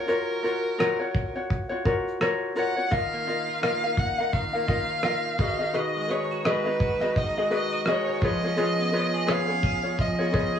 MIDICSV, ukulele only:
0, 0, Header, 1, 2, 480
1, 0, Start_track
1, 0, Key_signature, 6, "major"
1, 0, Tempo, 706714
1, 60, Time_signature, 4, 2, 24, 8
1, 7195, End_track
2, 0, Start_track
2, 0, Title_t, "Ukulele"
2, 0, Program_c, 0, 24
2, 54, Note_on_c, 0, 65, 73
2, 54, Note_on_c, 0, 70, 64
2, 56, Note_on_c, 0, 66, 71
2, 61, Note_on_c, 0, 73, 78
2, 284, Note_off_c, 0, 70, 0
2, 292, Note_off_c, 0, 65, 0
2, 292, Note_on_c, 0, 70, 55
2, 297, Note_off_c, 0, 73, 0
2, 298, Note_off_c, 0, 66, 0
2, 301, Note_on_c, 0, 65, 53
2, 305, Note_on_c, 0, 73, 63
2, 307, Note_on_c, 0, 66, 62
2, 527, Note_off_c, 0, 70, 0
2, 533, Note_off_c, 0, 65, 0
2, 535, Note_off_c, 0, 66, 0
2, 535, Note_on_c, 0, 70, 76
2, 536, Note_off_c, 0, 73, 0
2, 541, Note_on_c, 0, 65, 80
2, 544, Note_on_c, 0, 66, 91
2, 544, Note_on_c, 0, 73, 80
2, 669, Note_off_c, 0, 73, 0
2, 677, Note_on_c, 0, 73, 55
2, 680, Note_off_c, 0, 66, 0
2, 681, Note_off_c, 0, 65, 0
2, 682, Note_off_c, 0, 70, 0
2, 688, Note_on_c, 0, 66, 48
2, 689, Note_on_c, 0, 65, 39
2, 913, Note_off_c, 0, 73, 0
2, 921, Note_off_c, 0, 66, 0
2, 921, Note_on_c, 0, 73, 48
2, 923, Note_off_c, 0, 65, 0
2, 929, Note_on_c, 0, 66, 46
2, 931, Note_on_c, 0, 65, 38
2, 1143, Note_off_c, 0, 73, 0
2, 1151, Note_on_c, 0, 73, 58
2, 1152, Note_off_c, 0, 66, 0
2, 1160, Note_off_c, 0, 65, 0
2, 1160, Note_on_c, 0, 66, 47
2, 1168, Note_on_c, 0, 65, 49
2, 1253, Note_off_c, 0, 65, 0
2, 1254, Note_off_c, 0, 73, 0
2, 1258, Note_off_c, 0, 66, 0
2, 1258, Note_on_c, 0, 70, 67
2, 1261, Note_on_c, 0, 65, 67
2, 1267, Note_on_c, 0, 66, 65
2, 1273, Note_on_c, 0, 73, 62
2, 1491, Note_off_c, 0, 70, 0
2, 1494, Note_off_c, 0, 65, 0
2, 1498, Note_off_c, 0, 66, 0
2, 1499, Note_on_c, 0, 70, 83
2, 1501, Note_off_c, 0, 73, 0
2, 1503, Note_on_c, 0, 65, 79
2, 1506, Note_on_c, 0, 66, 85
2, 1509, Note_on_c, 0, 73, 86
2, 1729, Note_off_c, 0, 70, 0
2, 1733, Note_off_c, 0, 65, 0
2, 1737, Note_on_c, 0, 70, 57
2, 1738, Note_off_c, 0, 66, 0
2, 1741, Note_on_c, 0, 65, 60
2, 1745, Note_off_c, 0, 73, 0
2, 1746, Note_on_c, 0, 66, 66
2, 1754, Note_on_c, 0, 73, 61
2, 1870, Note_off_c, 0, 73, 0
2, 1879, Note_off_c, 0, 66, 0
2, 1879, Note_on_c, 0, 73, 50
2, 1883, Note_off_c, 0, 70, 0
2, 1884, Note_off_c, 0, 65, 0
2, 1887, Note_on_c, 0, 66, 40
2, 1892, Note_on_c, 0, 65, 39
2, 1970, Note_off_c, 0, 65, 0
2, 1975, Note_on_c, 0, 75, 63
2, 1978, Note_off_c, 0, 73, 0
2, 1978, Note_on_c, 0, 65, 67
2, 1979, Note_off_c, 0, 66, 0
2, 1981, Note_on_c, 0, 70, 69
2, 1984, Note_on_c, 0, 77, 75
2, 2212, Note_off_c, 0, 75, 0
2, 2218, Note_off_c, 0, 65, 0
2, 2221, Note_off_c, 0, 70, 0
2, 2221, Note_on_c, 0, 75, 54
2, 2223, Note_off_c, 0, 77, 0
2, 2226, Note_on_c, 0, 65, 55
2, 2231, Note_on_c, 0, 70, 55
2, 2234, Note_on_c, 0, 77, 64
2, 2453, Note_off_c, 0, 75, 0
2, 2456, Note_off_c, 0, 70, 0
2, 2457, Note_off_c, 0, 65, 0
2, 2460, Note_off_c, 0, 77, 0
2, 2461, Note_on_c, 0, 75, 69
2, 2464, Note_on_c, 0, 70, 75
2, 2465, Note_on_c, 0, 65, 82
2, 2468, Note_on_c, 0, 77, 85
2, 2598, Note_off_c, 0, 77, 0
2, 2604, Note_off_c, 0, 70, 0
2, 2605, Note_off_c, 0, 75, 0
2, 2606, Note_on_c, 0, 77, 42
2, 2607, Note_off_c, 0, 65, 0
2, 2612, Note_on_c, 0, 70, 43
2, 2619, Note_on_c, 0, 65, 37
2, 2834, Note_off_c, 0, 77, 0
2, 2841, Note_off_c, 0, 70, 0
2, 2842, Note_on_c, 0, 77, 46
2, 2846, Note_off_c, 0, 65, 0
2, 2849, Note_on_c, 0, 70, 39
2, 2855, Note_on_c, 0, 65, 34
2, 3070, Note_off_c, 0, 77, 0
2, 3077, Note_off_c, 0, 70, 0
2, 3079, Note_on_c, 0, 77, 46
2, 3085, Note_off_c, 0, 65, 0
2, 3085, Note_on_c, 0, 70, 46
2, 3093, Note_on_c, 0, 65, 44
2, 3170, Note_off_c, 0, 65, 0
2, 3173, Note_on_c, 0, 75, 53
2, 3174, Note_off_c, 0, 70, 0
2, 3178, Note_off_c, 0, 77, 0
2, 3179, Note_on_c, 0, 65, 58
2, 3183, Note_on_c, 0, 70, 58
2, 3186, Note_on_c, 0, 77, 58
2, 3411, Note_off_c, 0, 75, 0
2, 3415, Note_off_c, 0, 65, 0
2, 3419, Note_on_c, 0, 75, 69
2, 3420, Note_off_c, 0, 70, 0
2, 3422, Note_off_c, 0, 77, 0
2, 3423, Note_on_c, 0, 65, 71
2, 3428, Note_on_c, 0, 70, 75
2, 3430, Note_on_c, 0, 77, 84
2, 3657, Note_off_c, 0, 75, 0
2, 3658, Note_off_c, 0, 65, 0
2, 3660, Note_on_c, 0, 66, 69
2, 3660, Note_on_c, 0, 71, 64
2, 3662, Note_off_c, 0, 70, 0
2, 3665, Note_on_c, 0, 68, 67
2, 3666, Note_off_c, 0, 77, 0
2, 3673, Note_on_c, 0, 75, 74
2, 3789, Note_off_c, 0, 75, 0
2, 3797, Note_off_c, 0, 68, 0
2, 3797, Note_on_c, 0, 75, 50
2, 3802, Note_off_c, 0, 66, 0
2, 3805, Note_off_c, 0, 71, 0
2, 3805, Note_on_c, 0, 68, 43
2, 3810, Note_on_c, 0, 66, 39
2, 3892, Note_off_c, 0, 66, 0
2, 3896, Note_off_c, 0, 75, 0
2, 3896, Note_on_c, 0, 71, 68
2, 3898, Note_off_c, 0, 68, 0
2, 3900, Note_on_c, 0, 66, 75
2, 3904, Note_on_c, 0, 75, 75
2, 3906, Note_on_c, 0, 68, 74
2, 4129, Note_off_c, 0, 71, 0
2, 4131, Note_off_c, 0, 66, 0
2, 4138, Note_on_c, 0, 71, 58
2, 4139, Note_off_c, 0, 68, 0
2, 4139, Note_off_c, 0, 75, 0
2, 4139, Note_on_c, 0, 66, 56
2, 4147, Note_on_c, 0, 68, 63
2, 4147, Note_on_c, 0, 75, 59
2, 4372, Note_off_c, 0, 71, 0
2, 4377, Note_off_c, 0, 66, 0
2, 4379, Note_off_c, 0, 68, 0
2, 4379, Note_off_c, 0, 75, 0
2, 4380, Note_on_c, 0, 71, 78
2, 4385, Note_on_c, 0, 66, 72
2, 4387, Note_on_c, 0, 68, 73
2, 4388, Note_on_c, 0, 75, 85
2, 4514, Note_off_c, 0, 75, 0
2, 4520, Note_off_c, 0, 68, 0
2, 4522, Note_on_c, 0, 75, 47
2, 4525, Note_off_c, 0, 71, 0
2, 4528, Note_off_c, 0, 66, 0
2, 4528, Note_on_c, 0, 68, 39
2, 4538, Note_on_c, 0, 66, 36
2, 4754, Note_off_c, 0, 75, 0
2, 4759, Note_off_c, 0, 68, 0
2, 4762, Note_on_c, 0, 75, 48
2, 4768, Note_on_c, 0, 68, 42
2, 4770, Note_off_c, 0, 66, 0
2, 4778, Note_on_c, 0, 66, 38
2, 5004, Note_off_c, 0, 75, 0
2, 5007, Note_off_c, 0, 68, 0
2, 5012, Note_off_c, 0, 66, 0
2, 5012, Note_on_c, 0, 75, 49
2, 5014, Note_on_c, 0, 68, 45
2, 5021, Note_on_c, 0, 66, 43
2, 5094, Note_off_c, 0, 66, 0
2, 5097, Note_on_c, 0, 71, 60
2, 5098, Note_off_c, 0, 68, 0
2, 5102, Note_on_c, 0, 66, 64
2, 5103, Note_off_c, 0, 75, 0
2, 5106, Note_on_c, 0, 68, 57
2, 5111, Note_on_c, 0, 75, 64
2, 5334, Note_off_c, 0, 71, 0
2, 5337, Note_off_c, 0, 66, 0
2, 5339, Note_off_c, 0, 68, 0
2, 5343, Note_on_c, 0, 71, 67
2, 5345, Note_off_c, 0, 75, 0
2, 5345, Note_on_c, 0, 66, 70
2, 5347, Note_on_c, 0, 68, 76
2, 5353, Note_on_c, 0, 75, 90
2, 5582, Note_off_c, 0, 71, 0
2, 5583, Note_off_c, 0, 66, 0
2, 5585, Note_off_c, 0, 68, 0
2, 5588, Note_off_c, 0, 75, 0
2, 5590, Note_on_c, 0, 71, 61
2, 5593, Note_on_c, 0, 65, 62
2, 5597, Note_on_c, 0, 68, 62
2, 5600, Note_on_c, 0, 73, 65
2, 5726, Note_off_c, 0, 73, 0
2, 5727, Note_off_c, 0, 68, 0
2, 5730, Note_off_c, 0, 71, 0
2, 5731, Note_off_c, 0, 65, 0
2, 5734, Note_on_c, 0, 73, 50
2, 5736, Note_on_c, 0, 68, 47
2, 5742, Note_on_c, 0, 65, 42
2, 5813, Note_off_c, 0, 65, 0
2, 5816, Note_off_c, 0, 73, 0
2, 5817, Note_off_c, 0, 68, 0
2, 5819, Note_on_c, 0, 71, 69
2, 5821, Note_on_c, 0, 65, 72
2, 5824, Note_on_c, 0, 73, 80
2, 5825, Note_on_c, 0, 68, 79
2, 6053, Note_off_c, 0, 71, 0
2, 6058, Note_off_c, 0, 65, 0
2, 6059, Note_off_c, 0, 68, 0
2, 6061, Note_on_c, 0, 71, 63
2, 6063, Note_off_c, 0, 73, 0
2, 6066, Note_on_c, 0, 65, 62
2, 6067, Note_on_c, 0, 68, 59
2, 6074, Note_on_c, 0, 73, 67
2, 6285, Note_off_c, 0, 71, 0
2, 6288, Note_off_c, 0, 65, 0
2, 6291, Note_off_c, 0, 68, 0
2, 6293, Note_on_c, 0, 71, 68
2, 6296, Note_off_c, 0, 73, 0
2, 6297, Note_on_c, 0, 65, 74
2, 6299, Note_on_c, 0, 68, 80
2, 6304, Note_on_c, 0, 73, 83
2, 6432, Note_off_c, 0, 73, 0
2, 6440, Note_off_c, 0, 68, 0
2, 6440, Note_on_c, 0, 73, 44
2, 6441, Note_off_c, 0, 71, 0
2, 6443, Note_off_c, 0, 65, 0
2, 6448, Note_on_c, 0, 68, 45
2, 6453, Note_on_c, 0, 65, 40
2, 6670, Note_off_c, 0, 73, 0
2, 6678, Note_on_c, 0, 73, 44
2, 6682, Note_off_c, 0, 68, 0
2, 6685, Note_off_c, 0, 65, 0
2, 6690, Note_on_c, 0, 68, 38
2, 6694, Note_on_c, 0, 65, 41
2, 6911, Note_off_c, 0, 73, 0
2, 6916, Note_off_c, 0, 68, 0
2, 6919, Note_on_c, 0, 73, 55
2, 6920, Note_off_c, 0, 65, 0
2, 6924, Note_on_c, 0, 68, 44
2, 6929, Note_on_c, 0, 65, 45
2, 7007, Note_off_c, 0, 65, 0
2, 7011, Note_off_c, 0, 68, 0
2, 7014, Note_on_c, 0, 71, 60
2, 7016, Note_off_c, 0, 73, 0
2, 7016, Note_on_c, 0, 65, 58
2, 7019, Note_on_c, 0, 68, 67
2, 7024, Note_on_c, 0, 73, 67
2, 7195, Note_off_c, 0, 65, 0
2, 7195, Note_off_c, 0, 68, 0
2, 7195, Note_off_c, 0, 71, 0
2, 7195, Note_off_c, 0, 73, 0
2, 7195, End_track
0, 0, End_of_file